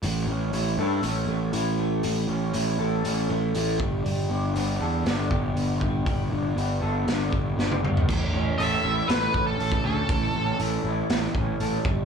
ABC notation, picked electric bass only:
X:1
M:4/4
L:1/8
Q:1/4=119
K:Amix
V:1 name="Picked electric bass" clef=bass
A,,, A,,, A,,, G,, A,,, A,,, A,,,2 | A,,, A,,, A,,, A,,, A,,, A,,, A,,, G,,, | G,,, G,,, G,,, E,, G,,, G,,, G,,,2 | G,,, G,,, G,,, G,,, G,,, G,,, G,,, G,,, |
A,,, A,,, A,,, A,,, A,,, A,,, A,,, D,, | A,,, A,,, A,,, A,,, A,,, A,,, A,,, G,,, |]